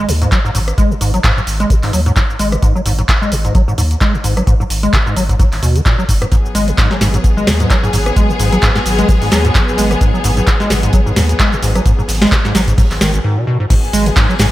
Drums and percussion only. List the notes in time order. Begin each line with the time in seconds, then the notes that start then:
0.09 open hi-hat, cabasa
0.22 closed hi-hat, cabasa
0.32 kick, clap, closed hi-hat, cabasa
0.45 cabasa
0.55 open hi-hat, cabasa
0.68 cross-stick, closed hi-hat, cabasa
0.78 kick, closed hi-hat, cabasa
0.92 cabasa
1.01 open hi-hat, cabasa
1.14 closed hi-hat, cabasa
1.24 kick, clap, closed hi-hat, cabasa
1.38 cabasa
1.47 open hi-hat, cabasa
1.60 closed hi-hat, cabasa
1.70 kick, closed hi-hat, cabasa
1.83 clap, open hi-hat, cabasa
1.93 open hi-hat, cabasa
2.06 closed hi-hat, cabasa
2.16 kick, clap, closed hi-hat, cabasa
2.30 cabasa
2.39 open hi-hat, cabasa
2.52 cross-stick, closed hi-hat, cabasa
2.62 kick, closed hi-hat, cabasa
2.76 cabasa
2.86 open hi-hat, cabasa
2.99 closed hi-hat, cabasa
3.09 kick, clap, closed hi-hat, cabasa
3.22 cabasa
3.32 open hi-hat, cabasa
3.45 closed hi-hat, cabasa
3.55 kick, closed hi-hat, cabasa
3.69 cabasa
3.78 open hi-hat, cabasa
3.91 closed hi-hat, cabasa
4.01 kick, clap, closed hi-hat, cabasa
4.15 cabasa
4.24 open hi-hat, cabasa
4.37 cross-stick, closed hi-hat, cabasa
4.47 kick, closed hi-hat, cabasa
4.61 cabasa
4.70 open hi-hat, cabasa
4.83 closed hi-hat, cabasa
4.93 kick, clap, closed hi-hat, cabasa
5.07 cabasa
5.16 open hi-hat, cabasa
5.29 kick, closed hi-hat, cabasa
5.39 kick, closed hi-hat, cabasa
5.52 clap, open hi-hat, cabasa
5.63 open hi-hat, cabasa
5.76 closed hi-hat, cabasa
5.86 kick, clap, closed hi-hat, cabasa
5.99 cabasa
6.09 kick, open hi-hat, cabasa
6.22 cross-stick, closed hi-hat, cabasa
6.32 kick, closed hi-hat, cabasa
6.46 cabasa
6.55 closed hi-hat, open hi-hat, cabasa
6.68 closed hi-hat, cabasa
6.78 kick, snare, clap, closed hi-hat, cabasa
6.91 snare, cabasa
7.01 snare, closed hi-hat, open hi-hat, cabasa
7.14 closed hi-hat, cabasa
7.24 kick, closed hi-hat, cabasa
7.38 cabasa
7.47 snare, closed hi-hat, open hi-hat, cabasa
7.60 closed hi-hat, cabasa
7.70 kick, snare, clap, closed hi-hat, cabasa
7.84 closed hi-hat, cabasa
7.93 snare, closed hi-hat, open hi-hat, cabasa
8.06 cross-stick, closed hi-hat, cabasa
8.16 kick, closed hi-hat, cabasa
8.30 cabasa
8.39 closed hi-hat, open hi-hat, cabasa
8.52 closed hi-hat, cabasa
8.62 kick, snare, clap, closed hi-hat, cabasa
8.76 snare, cabasa
8.86 closed hi-hat, open hi-hat, cabasa
8.98 snare, closed hi-hat, cabasa
9.08 kick, closed hi-hat, open hi-hat, cabasa
9.22 open hi-hat, cabasa
9.31 snare, closed hi-hat, open hi-hat, cabasa
9.45 closed hi-hat, cabasa
9.55 kick, snare, clap, closed hi-hat, cabasa
9.69 cabasa
9.78 closed hi-hat, open hi-hat, cabasa
9.91 cross-stick, snare, closed hi-hat, cabasa
10.01 kick, closed hi-hat, cabasa
10.15 cabasa
10.24 closed hi-hat, open hi-hat, cabasa
10.37 closed hi-hat, cabasa
10.47 kick, snare, clap, closed hi-hat, cabasa
10.60 snare, cabasa
10.70 snare, closed hi-hat, open hi-hat, cabasa
10.83 closed hi-hat, cabasa
10.93 kick, closed hi-hat, cabasa
11.07 cabasa
11.16 snare, closed hi-hat, open hi-hat, cabasa
11.29 closed hi-hat, cabasa
11.39 kick, snare, clap, closed hi-hat, cabasa
11.52 closed hi-hat, cabasa
11.62 snare, closed hi-hat, open hi-hat, cabasa
11.75 cross-stick, closed hi-hat, cabasa
11.86 kick, closed hi-hat, cabasa
11.99 cabasa
12.08 snare, closed hi-hat, open hi-hat, cabasa
12.15 snare, closed hi-hat
12.22 snare, closed hi-hat, open hi-hat, cabasa
12.26 snare, closed hi-hat
12.32 kick, snare, clap, closed hi-hat, cabasa
12.45 snare, cabasa
12.55 snare, closed hi-hat, open hi-hat, cabasa
12.68 kick, snare, closed hi-hat, cabasa
12.78 kick, closed hi-hat, open hi-hat, cabasa
12.91 snare, clap, open hi-hat, cabasa
13.01 snare, closed hi-hat, open hi-hat, cabasa
13.14 closed hi-hat, cabasa
13.70 kick, closed hi-hat, crash, cabasa
13.84 cabasa
13.93 closed hi-hat, open hi-hat, cabasa
14.06 closed hi-hat, cabasa
14.16 kick, snare, clap, closed hi-hat, cabasa
14.30 cabasa
14.39 snare, closed hi-hat, open hi-hat, cabasa